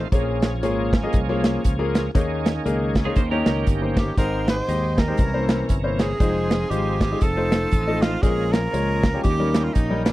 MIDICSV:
0, 0, Header, 1, 7, 480
1, 0, Start_track
1, 0, Tempo, 507185
1, 113, Time_signature, 4, 2, 24, 8
1, 9583, End_track
2, 0, Start_track
2, 0, Title_t, "Clean electric guitar"
2, 0, Program_c, 0, 27
2, 2889, Note_on_c, 0, 68, 73
2, 2894, Note_on_c, 0, 65, 63
2, 2983, Note_off_c, 0, 68, 0
2, 2986, Note_off_c, 0, 65, 0
2, 2996, Note_on_c, 0, 72, 80
2, 3128, Note_off_c, 0, 72, 0
2, 3134, Note_on_c, 0, 70, 74
2, 3140, Note_on_c, 0, 67, 58
2, 3817, Note_off_c, 0, 70, 0
2, 3820, Note_off_c, 0, 67, 0
2, 9583, End_track
3, 0, Start_track
3, 0, Title_t, "Tenor saxophone"
3, 0, Program_c, 1, 66
3, 3774, Note_on_c, 1, 67, 76
3, 3946, Note_off_c, 1, 67, 0
3, 3959, Note_on_c, 1, 70, 87
3, 4220, Note_off_c, 1, 70, 0
3, 4256, Note_on_c, 1, 72, 99
3, 4725, Note_on_c, 1, 70, 90
3, 4739, Note_off_c, 1, 72, 0
3, 5394, Note_off_c, 1, 70, 0
3, 5675, Note_on_c, 1, 68, 90
3, 6337, Note_on_c, 1, 67, 91
3, 6351, Note_off_c, 1, 68, 0
3, 6628, Note_off_c, 1, 67, 0
3, 6641, Note_on_c, 1, 67, 85
3, 6833, Note_on_c, 1, 69, 104
3, 6847, Note_off_c, 1, 67, 0
3, 7591, Note_on_c, 1, 65, 90
3, 7605, Note_off_c, 1, 69, 0
3, 7780, Note_on_c, 1, 68, 94
3, 7794, Note_off_c, 1, 65, 0
3, 8065, Note_on_c, 1, 70, 110
3, 8079, Note_off_c, 1, 68, 0
3, 8733, Note_off_c, 1, 70, 0
3, 8739, Note_on_c, 1, 67, 97
3, 9123, Note_on_c, 1, 65, 79
3, 9137, Note_off_c, 1, 67, 0
3, 9216, Note_on_c, 1, 63, 85
3, 9230, Note_off_c, 1, 65, 0
3, 9508, Note_off_c, 1, 63, 0
3, 9515, Note_on_c, 1, 63, 72
3, 9583, Note_off_c, 1, 63, 0
3, 9583, End_track
4, 0, Start_track
4, 0, Title_t, "Grand piano"
4, 0, Program_c, 2, 0
4, 114, Note_on_c, 2, 46, 70
4, 114, Note_on_c, 2, 58, 78
4, 116, Note_on_c, 2, 65, 74
4, 117, Note_on_c, 2, 68, 75
4, 118, Note_on_c, 2, 73, 86
4, 440, Note_off_c, 2, 58, 0
4, 441, Note_off_c, 2, 65, 0
4, 441, Note_off_c, 2, 68, 0
4, 442, Note_off_c, 2, 73, 0
4, 596, Note_on_c, 2, 68, 80
4, 597, Note_on_c, 2, 58, 85
4, 597, Note_on_c, 2, 73, 94
4, 598, Note_on_c, 2, 65, 74
4, 840, Note_off_c, 2, 46, 0
4, 854, Note_off_c, 2, 58, 0
4, 854, Note_off_c, 2, 68, 0
4, 854, Note_off_c, 2, 73, 0
4, 855, Note_off_c, 2, 65, 0
4, 979, Note_on_c, 2, 58, 79
4, 979, Note_on_c, 2, 65, 73
4, 979, Note_on_c, 2, 68, 77
4, 979, Note_on_c, 2, 75, 87
4, 1104, Note_off_c, 2, 58, 0
4, 1104, Note_off_c, 2, 68, 0
4, 1105, Note_off_c, 2, 65, 0
4, 1105, Note_off_c, 2, 75, 0
4, 1222, Note_on_c, 2, 65, 74
4, 1223, Note_on_c, 2, 58, 90
4, 1223, Note_on_c, 2, 73, 93
4, 1224, Note_on_c, 2, 68, 74
4, 1499, Note_off_c, 2, 65, 0
4, 1500, Note_off_c, 2, 58, 0
4, 1500, Note_off_c, 2, 68, 0
4, 1500, Note_off_c, 2, 73, 0
4, 1693, Note_on_c, 2, 68, 83
4, 1694, Note_on_c, 2, 58, 83
4, 1695, Note_on_c, 2, 65, 76
4, 1698, Note_on_c, 2, 70, 85
4, 1916, Note_off_c, 2, 58, 0
4, 1916, Note_off_c, 2, 68, 0
4, 1917, Note_off_c, 2, 65, 0
4, 1918, Note_off_c, 2, 70, 0
4, 2032, Note_on_c, 2, 51, 70
4, 2032, Note_on_c, 2, 58, 80
4, 2032, Note_on_c, 2, 68, 77
4, 2033, Note_on_c, 2, 63, 75
4, 2033, Note_on_c, 2, 73, 89
4, 2358, Note_off_c, 2, 58, 0
4, 2358, Note_off_c, 2, 68, 0
4, 2358, Note_off_c, 2, 73, 0
4, 2359, Note_off_c, 2, 63, 0
4, 2513, Note_on_c, 2, 58, 83
4, 2513, Note_on_c, 2, 63, 76
4, 2513, Note_on_c, 2, 70, 89
4, 2515, Note_on_c, 2, 68, 78
4, 2758, Note_off_c, 2, 51, 0
4, 2771, Note_off_c, 2, 58, 0
4, 2771, Note_off_c, 2, 63, 0
4, 2771, Note_off_c, 2, 70, 0
4, 2772, Note_off_c, 2, 68, 0
4, 2891, Note_on_c, 2, 63, 72
4, 2893, Note_on_c, 2, 58, 73
4, 2893, Note_on_c, 2, 68, 73
4, 2895, Note_on_c, 2, 73, 82
4, 2989, Note_off_c, 2, 63, 0
4, 2990, Note_off_c, 2, 58, 0
4, 2990, Note_off_c, 2, 68, 0
4, 2992, Note_off_c, 2, 73, 0
4, 2998, Note_on_c, 2, 51, 68
4, 3134, Note_on_c, 2, 58, 79
4, 3135, Note_on_c, 2, 67, 75
4, 3137, Note_on_c, 2, 73, 87
4, 3139, Note_on_c, 2, 63, 79
4, 3415, Note_off_c, 2, 58, 0
4, 3415, Note_off_c, 2, 67, 0
4, 3416, Note_off_c, 2, 73, 0
4, 3417, Note_off_c, 2, 63, 0
4, 3614, Note_on_c, 2, 58, 68
4, 3614, Note_on_c, 2, 63, 64
4, 3616, Note_on_c, 2, 67, 59
4, 3617, Note_on_c, 2, 72, 75
4, 3721, Note_off_c, 2, 51, 0
4, 3835, Note_off_c, 2, 63, 0
4, 3836, Note_off_c, 2, 58, 0
4, 3837, Note_off_c, 2, 67, 0
4, 3837, Note_off_c, 2, 72, 0
4, 3952, Note_on_c, 2, 44, 60
4, 3952, Note_on_c, 2, 67, 63
4, 3953, Note_on_c, 2, 56, 69
4, 3955, Note_on_c, 2, 63, 63
4, 3957, Note_on_c, 2, 72, 80
4, 4277, Note_off_c, 2, 67, 0
4, 4278, Note_off_c, 2, 56, 0
4, 4279, Note_off_c, 2, 63, 0
4, 4280, Note_off_c, 2, 72, 0
4, 4432, Note_on_c, 2, 56, 66
4, 4432, Note_on_c, 2, 67, 63
4, 4434, Note_on_c, 2, 75, 78
4, 4435, Note_on_c, 2, 63, 65
4, 4677, Note_off_c, 2, 44, 0
4, 4690, Note_off_c, 2, 56, 0
4, 4690, Note_off_c, 2, 67, 0
4, 4691, Note_off_c, 2, 75, 0
4, 4692, Note_off_c, 2, 63, 0
4, 4805, Note_on_c, 2, 56, 69
4, 4805, Note_on_c, 2, 63, 57
4, 4807, Note_on_c, 2, 72, 71
4, 4808, Note_on_c, 2, 67, 61
4, 4904, Note_on_c, 2, 48, 60
4, 4906, Note_off_c, 2, 56, 0
4, 4906, Note_off_c, 2, 63, 0
4, 4907, Note_off_c, 2, 67, 0
4, 4907, Note_off_c, 2, 72, 0
4, 5053, Note_on_c, 2, 61, 63
4, 5054, Note_on_c, 2, 58, 69
4, 5055, Note_on_c, 2, 64, 64
4, 5056, Note_on_c, 2, 72, 84
4, 5334, Note_off_c, 2, 61, 0
4, 5335, Note_off_c, 2, 58, 0
4, 5335, Note_off_c, 2, 64, 0
4, 5335, Note_off_c, 2, 72, 0
4, 5526, Note_on_c, 2, 72, 80
4, 5527, Note_on_c, 2, 58, 67
4, 5527, Note_on_c, 2, 64, 62
4, 5529, Note_on_c, 2, 61, 63
4, 5633, Note_off_c, 2, 48, 0
4, 5751, Note_off_c, 2, 72, 0
4, 5752, Note_off_c, 2, 58, 0
4, 5752, Note_off_c, 2, 64, 0
4, 5753, Note_off_c, 2, 61, 0
4, 5869, Note_on_c, 2, 63, 64
4, 5869, Note_on_c, 2, 72, 79
4, 5870, Note_on_c, 2, 56, 71
4, 5870, Note_on_c, 2, 65, 64
4, 6196, Note_off_c, 2, 56, 0
4, 6196, Note_off_c, 2, 63, 0
4, 6196, Note_off_c, 2, 65, 0
4, 6196, Note_off_c, 2, 72, 0
4, 6346, Note_on_c, 2, 56, 69
4, 6347, Note_on_c, 2, 63, 59
4, 6348, Note_on_c, 2, 65, 61
4, 6350, Note_on_c, 2, 72, 77
4, 6607, Note_off_c, 2, 56, 0
4, 6608, Note_off_c, 2, 63, 0
4, 6608, Note_off_c, 2, 65, 0
4, 6609, Note_off_c, 2, 72, 0
4, 6732, Note_on_c, 2, 68, 71
4, 6733, Note_on_c, 2, 56, 65
4, 6734, Note_on_c, 2, 65, 63
4, 6737, Note_on_c, 2, 63, 64
4, 6829, Note_off_c, 2, 68, 0
4, 6830, Note_off_c, 2, 56, 0
4, 6830, Note_off_c, 2, 65, 0
4, 6832, Note_off_c, 2, 63, 0
4, 6975, Note_on_c, 2, 65, 65
4, 6976, Note_on_c, 2, 72, 81
4, 6978, Note_on_c, 2, 57, 74
4, 6980, Note_on_c, 2, 63, 65
4, 7255, Note_off_c, 2, 65, 0
4, 7256, Note_off_c, 2, 72, 0
4, 7257, Note_off_c, 2, 57, 0
4, 7257, Note_off_c, 2, 63, 0
4, 7452, Note_on_c, 2, 65, 67
4, 7453, Note_on_c, 2, 75, 83
4, 7454, Note_on_c, 2, 57, 75
4, 7455, Note_on_c, 2, 63, 60
4, 7675, Note_off_c, 2, 65, 0
4, 7675, Note_off_c, 2, 75, 0
4, 7676, Note_off_c, 2, 57, 0
4, 7676, Note_off_c, 2, 63, 0
4, 7787, Note_on_c, 2, 61, 61
4, 7788, Note_on_c, 2, 46, 66
4, 7788, Note_on_c, 2, 65, 61
4, 7790, Note_on_c, 2, 70, 77
4, 7791, Note_on_c, 2, 56, 71
4, 8115, Note_off_c, 2, 61, 0
4, 8116, Note_off_c, 2, 65, 0
4, 8117, Note_off_c, 2, 56, 0
4, 8117, Note_off_c, 2, 70, 0
4, 8264, Note_on_c, 2, 73, 85
4, 8266, Note_on_c, 2, 61, 61
4, 8268, Note_on_c, 2, 56, 73
4, 8270, Note_on_c, 2, 65, 65
4, 8517, Note_off_c, 2, 46, 0
4, 8527, Note_off_c, 2, 73, 0
4, 8528, Note_off_c, 2, 61, 0
4, 8529, Note_off_c, 2, 56, 0
4, 8529, Note_off_c, 2, 65, 0
4, 8649, Note_on_c, 2, 65, 63
4, 8649, Note_on_c, 2, 67, 75
4, 8650, Note_on_c, 2, 56, 64
4, 8650, Note_on_c, 2, 61, 60
4, 8748, Note_off_c, 2, 65, 0
4, 8749, Note_off_c, 2, 56, 0
4, 8749, Note_off_c, 2, 61, 0
4, 8749, Note_off_c, 2, 67, 0
4, 8749, Note_on_c, 2, 51, 63
4, 8894, Note_on_c, 2, 55, 73
4, 8894, Note_on_c, 2, 61, 69
4, 8894, Note_on_c, 2, 70, 84
4, 8895, Note_on_c, 2, 63, 66
4, 9175, Note_off_c, 2, 61, 0
4, 9176, Note_off_c, 2, 55, 0
4, 9176, Note_off_c, 2, 63, 0
4, 9176, Note_off_c, 2, 70, 0
4, 9371, Note_on_c, 2, 61, 64
4, 9373, Note_on_c, 2, 55, 76
4, 9374, Note_on_c, 2, 63, 63
4, 9374, Note_on_c, 2, 70, 73
4, 9478, Note_off_c, 2, 51, 0
4, 9583, Note_off_c, 2, 55, 0
4, 9583, Note_off_c, 2, 61, 0
4, 9583, Note_off_c, 2, 63, 0
4, 9583, Note_off_c, 2, 70, 0
4, 9583, End_track
5, 0, Start_track
5, 0, Title_t, "Tonewheel organ"
5, 0, Program_c, 3, 16
5, 0, Note_on_c, 3, 65, 66
5, 104, Note_off_c, 3, 65, 0
5, 124, Note_on_c, 3, 53, 67
5, 124, Note_on_c, 3, 61, 62
5, 124, Note_on_c, 3, 68, 75
5, 125, Note_on_c, 3, 58, 64
5, 1999, Note_off_c, 3, 53, 0
5, 1999, Note_off_c, 3, 58, 0
5, 1999, Note_off_c, 3, 61, 0
5, 1999, Note_off_c, 3, 68, 0
5, 2033, Note_on_c, 3, 51, 65
5, 2033, Note_on_c, 3, 67, 56
5, 2036, Note_on_c, 3, 58, 64
5, 2038, Note_on_c, 3, 61, 62
5, 2093, Note_on_c, 3, 68, 73
5, 2100, Note_off_c, 3, 67, 0
5, 2972, Note_off_c, 3, 51, 0
5, 2973, Note_off_c, 3, 58, 0
5, 2974, Note_off_c, 3, 61, 0
5, 2992, Note_on_c, 3, 61, 65
5, 2993, Note_on_c, 3, 58, 66
5, 2994, Note_on_c, 3, 67, 81
5, 2996, Note_on_c, 3, 51, 74
5, 3003, Note_off_c, 3, 68, 0
5, 3932, Note_off_c, 3, 58, 0
5, 3932, Note_off_c, 3, 61, 0
5, 3932, Note_off_c, 3, 67, 0
5, 3933, Note_off_c, 3, 51, 0
5, 3956, Note_on_c, 3, 65, 49
5, 3957, Note_on_c, 3, 60, 53
5, 3959, Note_on_c, 3, 51, 55
5, 3959, Note_on_c, 3, 56, 52
5, 4016, Note_on_c, 3, 67, 67
5, 4021, Note_off_c, 3, 65, 0
5, 4894, Note_off_c, 3, 60, 0
5, 4895, Note_off_c, 3, 51, 0
5, 4895, Note_off_c, 3, 56, 0
5, 4913, Note_on_c, 3, 48, 59
5, 4915, Note_on_c, 3, 52, 62
5, 4917, Note_on_c, 3, 61, 57
5, 4918, Note_on_c, 3, 70, 69
5, 4924, Note_off_c, 3, 67, 0
5, 5852, Note_off_c, 3, 48, 0
5, 5853, Note_off_c, 3, 52, 0
5, 5854, Note_off_c, 3, 61, 0
5, 5854, Note_off_c, 3, 70, 0
5, 5880, Note_on_c, 3, 53, 58
5, 5881, Note_on_c, 3, 63, 52
5, 5883, Note_on_c, 3, 60, 54
5, 5883, Note_on_c, 3, 68, 63
5, 6816, Note_off_c, 3, 53, 0
5, 6816, Note_off_c, 3, 63, 0
5, 6817, Note_off_c, 3, 60, 0
5, 6817, Note_off_c, 3, 68, 0
5, 6836, Note_on_c, 3, 63, 60
5, 6839, Note_on_c, 3, 69, 72
5, 6840, Note_on_c, 3, 53, 66
5, 6843, Note_on_c, 3, 60, 58
5, 7774, Note_off_c, 3, 63, 0
5, 7775, Note_off_c, 3, 69, 0
5, 7776, Note_off_c, 3, 53, 0
5, 7778, Note_off_c, 3, 60, 0
5, 7792, Note_on_c, 3, 53, 57
5, 7792, Note_on_c, 3, 58, 51
5, 7792, Note_on_c, 3, 61, 53
5, 7793, Note_on_c, 3, 67, 54
5, 7854, Note_on_c, 3, 68, 60
5, 7860, Note_off_c, 3, 67, 0
5, 8730, Note_off_c, 3, 58, 0
5, 8732, Note_off_c, 3, 53, 0
5, 8732, Note_off_c, 3, 61, 0
5, 8741, Note_on_c, 3, 58, 56
5, 8746, Note_on_c, 3, 61, 62
5, 8746, Note_on_c, 3, 67, 69
5, 8750, Note_on_c, 3, 51, 65
5, 8764, Note_off_c, 3, 68, 0
5, 9583, Note_off_c, 3, 51, 0
5, 9583, Note_off_c, 3, 58, 0
5, 9583, Note_off_c, 3, 61, 0
5, 9583, Note_off_c, 3, 67, 0
5, 9583, End_track
6, 0, Start_track
6, 0, Title_t, "Fingered electric bass"
6, 0, Program_c, 4, 33
6, 114, Note_on_c, 4, 34, 99
6, 602, Note_off_c, 4, 34, 0
6, 602, Note_on_c, 4, 32, 88
6, 1005, Note_off_c, 4, 32, 0
6, 1080, Note_on_c, 4, 36, 93
6, 1484, Note_off_c, 4, 36, 0
6, 1563, Note_on_c, 4, 37, 73
6, 1966, Note_off_c, 4, 37, 0
6, 2036, Note_on_c, 4, 39, 95
6, 2442, Note_off_c, 4, 39, 0
6, 2515, Note_on_c, 4, 37, 82
6, 2921, Note_off_c, 4, 37, 0
6, 2994, Note_on_c, 4, 39, 103
6, 3234, Note_off_c, 4, 39, 0
6, 3278, Note_on_c, 4, 37, 83
6, 3442, Note_off_c, 4, 37, 0
6, 3475, Note_on_c, 4, 31, 82
6, 3880, Note_off_c, 4, 31, 0
6, 3952, Note_on_c, 4, 32, 91
6, 4359, Note_off_c, 4, 32, 0
6, 4433, Note_on_c, 4, 39, 78
6, 4839, Note_off_c, 4, 39, 0
6, 4912, Note_on_c, 4, 36, 100
6, 5319, Note_off_c, 4, 36, 0
6, 5393, Note_on_c, 4, 31, 81
6, 5800, Note_off_c, 4, 31, 0
6, 5872, Note_on_c, 4, 29, 94
6, 6279, Note_off_c, 4, 29, 0
6, 6345, Note_on_c, 4, 32, 95
6, 6755, Note_off_c, 4, 32, 0
6, 6832, Note_on_c, 4, 29, 100
6, 7239, Note_off_c, 4, 29, 0
6, 7315, Note_on_c, 4, 33, 80
6, 7721, Note_off_c, 4, 33, 0
6, 7789, Note_on_c, 4, 34, 105
6, 8198, Note_off_c, 4, 34, 0
6, 8267, Note_on_c, 4, 37, 84
6, 8677, Note_off_c, 4, 37, 0
6, 8754, Note_on_c, 4, 39, 101
6, 9161, Note_off_c, 4, 39, 0
6, 9233, Note_on_c, 4, 34, 78
6, 9583, Note_off_c, 4, 34, 0
6, 9583, End_track
7, 0, Start_track
7, 0, Title_t, "Drums"
7, 115, Note_on_c, 9, 36, 110
7, 117, Note_on_c, 9, 42, 90
7, 210, Note_off_c, 9, 36, 0
7, 211, Note_off_c, 9, 42, 0
7, 400, Note_on_c, 9, 42, 73
7, 403, Note_on_c, 9, 38, 94
7, 494, Note_off_c, 9, 42, 0
7, 497, Note_off_c, 9, 38, 0
7, 596, Note_on_c, 9, 42, 84
7, 690, Note_off_c, 9, 42, 0
7, 879, Note_on_c, 9, 36, 80
7, 883, Note_on_c, 9, 42, 53
7, 885, Note_on_c, 9, 38, 95
7, 973, Note_off_c, 9, 36, 0
7, 978, Note_off_c, 9, 42, 0
7, 980, Note_off_c, 9, 38, 0
7, 1067, Note_on_c, 9, 42, 78
7, 1079, Note_on_c, 9, 36, 100
7, 1162, Note_off_c, 9, 42, 0
7, 1173, Note_off_c, 9, 36, 0
7, 1361, Note_on_c, 9, 42, 69
7, 1363, Note_on_c, 9, 38, 97
7, 1456, Note_off_c, 9, 42, 0
7, 1458, Note_off_c, 9, 38, 0
7, 1556, Note_on_c, 9, 42, 88
7, 1562, Note_on_c, 9, 36, 87
7, 1651, Note_off_c, 9, 42, 0
7, 1656, Note_off_c, 9, 36, 0
7, 1844, Note_on_c, 9, 42, 66
7, 1848, Note_on_c, 9, 38, 100
7, 1939, Note_off_c, 9, 42, 0
7, 1943, Note_off_c, 9, 38, 0
7, 2036, Note_on_c, 9, 36, 115
7, 2036, Note_on_c, 9, 42, 95
7, 2131, Note_off_c, 9, 36, 0
7, 2131, Note_off_c, 9, 42, 0
7, 2326, Note_on_c, 9, 42, 68
7, 2329, Note_on_c, 9, 38, 90
7, 2420, Note_off_c, 9, 42, 0
7, 2423, Note_off_c, 9, 38, 0
7, 2519, Note_on_c, 9, 42, 86
7, 2614, Note_off_c, 9, 42, 0
7, 2795, Note_on_c, 9, 36, 83
7, 2798, Note_on_c, 9, 42, 55
7, 2799, Note_on_c, 9, 38, 96
7, 2890, Note_off_c, 9, 36, 0
7, 2892, Note_off_c, 9, 42, 0
7, 2894, Note_off_c, 9, 38, 0
7, 2987, Note_on_c, 9, 42, 77
7, 2995, Note_on_c, 9, 36, 102
7, 3081, Note_off_c, 9, 42, 0
7, 3089, Note_off_c, 9, 36, 0
7, 3273, Note_on_c, 9, 42, 67
7, 3275, Note_on_c, 9, 38, 97
7, 3368, Note_off_c, 9, 42, 0
7, 3370, Note_off_c, 9, 38, 0
7, 3470, Note_on_c, 9, 42, 82
7, 3476, Note_on_c, 9, 36, 93
7, 3565, Note_off_c, 9, 42, 0
7, 3570, Note_off_c, 9, 36, 0
7, 3754, Note_on_c, 9, 36, 92
7, 3754, Note_on_c, 9, 42, 72
7, 3758, Note_on_c, 9, 38, 100
7, 3849, Note_off_c, 9, 36, 0
7, 3849, Note_off_c, 9, 42, 0
7, 3853, Note_off_c, 9, 38, 0
7, 3951, Note_on_c, 9, 36, 107
7, 3953, Note_on_c, 9, 42, 92
7, 4045, Note_off_c, 9, 36, 0
7, 4047, Note_off_c, 9, 42, 0
7, 4236, Note_on_c, 9, 42, 69
7, 4240, Note_on_c, 9, 38, 90
7, 4331, Note_off_c, 9, 42, 0
7, 4334, Note_off_c, 9, 38, 0
7, 4435, Note_on_c, 9, 42, 90
7, 4530, Note_off_c, 9, 42, 0
7, 4711, Note_on_c, 9, 36, 75
7, 4712, Note_on_c, 9, 42, 57
7, 4714, Note_on_c, 9, 38, 92
7, 4805, Note_off_c, 9, 36, 0
7, 4807, Note_off_c, 9, 42, 0
7, 4809, Note_off_c, 9, 38, 0
7, 4897, Note_on_c, 9, 42, 74
7, 4910, Note_on_c, 9, 36, 102
7, 4991, Note_off_c, 9, 42, 0
7, 5005, Note_off_c, 9, 36, 0
7, 5193, Note_on_c, 9, 42, 71
7, 5195, Note_on_c, 9, 38, 95
7, 5287, Note_off_c, 9, 42, 0
7, 5289, Note_off_c, 9, 38, 0
7, 5385, Note_on_c, 9, 42, 82
7, 5393, Note_on_c, 9, 36, 86
7, 5479, Note_off_c, 9, 42, 0
7, 5488, Note_off_c, 9, 36, 0
7, 5670, Note_on_c, 9, 42, 74
7, 5674, Note_on_c, 9, 38, 109
7, 5764, Note_off_c, 9, 42, 0
7, 5768, Note_off_c, 9, 38, 0
7, 5870, Note_on_c, 9, 36, 113
7, 5870, Note_on_c, 9, 42, 88
7, 5965, Note_off_c, 9, 36, 0
7, 5965, Note_off_c, 9, 42, 0
7, 6157, Note_on_c, 9, 42, 66
7, 6160, Note_on_c, 9, 38, 93
7, 6252, Note_off_c, 9, 42, 0
7, 6255, Note_off_c, 9, 38, 0
7, 6353, Note_on_c, 9, 42, 89
7, 6448, Note_off_c, 9, 42, 0
7, 6630, Note_on_c, 9, 36, 75
7, 6632, Note_on_c, 9, 42, 57
7, 6634, Note_on_c, 9, 38, 97
7, 6725, Note_off_c, 9, 36, 0
7, 6727, Note_off_c, 9, 42, 0
7, 6729, Note_off_c, 9, 38, 0
7, 6822, Note_on_c, 9, 42, 76
7, 6831, Note_on_c, 9, 36, 105
7, 6916, Note_off_c, 9, 42, 0
7, 6926, Note_off_c, 9, 36, 0
7, 7115, Note_on_c, 9, 42, 66
7, 7117, Note_on_c, 9, 38, 102
7, 7209, Note_off_c, 9, 42, 0
7, 7211, Note_off_c, 9, 38, 0
7, 7301, Note_on_c, 9, 42, 87
7, 7312, Note_on_c, 9, 36, 91
7, 7396, Note_off_c, 9, 42, 0
7, 7406, Note_off_c, 9, 36, 0
7, 7591, Note_on_c, 9, 42, 74
7, 7595, Note_on_c, 9, 38, 103
7, 7685, Note_off_c, 9, 42, 0
7, 7690, Note_off_c, 9, 38, 0
7, 7787, Note_on_c, 9, 36, 105
7, 7790, Note_on_c, 9, 42, 89
7, 7882, Note_off_c, 9, 36, 0
7, 7885, Note_off_c, 9, 42, 0
7, 8075, Note_on_c, 9, 42, 66
7, 8078, Note_on_c, 9, 38, 88
7, 8170, Note_off_c, 9, 42, 0
7, 8173, Note_off_c, 9, 38, 0
7, 8271, Note_on_c, 9, 42, 87
7, 8366, Note_off_c, 9, 42, 0
7, 8549, Note_on_c, 9, 42, 55
7, 8550, Note_on_c, 9, 36, 86
7, 8551, Note_on_c, 9, 38, 101
7, 8644, Note_off_c, 9, 36, 0
7, 8644, Note_off_c, 9, 42, 0
7, 8646, Note_off_c, 9, 38, 0
7, 8741, Note_on_c, 9, 42, 77
7, 8751, Note_on_c, 9, 36, 100
7, 8836, Note_off_c, 9, 42, 0
7, 8846, Note_off_c, 9, 36, 0
7, 9031, Note_on_c, 9, 42, 67
7, 9033, Note_on_c, 9, 38, 96
7, 9126, Note_off_c, 9, 42, 0
7, 9128, Note_off_c, 9, 38, 0
7, 9229, Note_on_c, 9, 42, 91
7, 9235, Note_on_c, 9, 36, 88
7, 9323, Note_off_c, 9, 42, 0
7, 9330, Note_off_c, 9, 36, 0
7, 9517, Note_on_c, 9, 42, 68
7, 9521, Note_on_c, 9, 38, 106
7, 9583, Note_off_c, 9, 38, 0
7, 9583, Note_off_c, 9, 42, 0
7, 9583, End_track
0, 0, End_of_file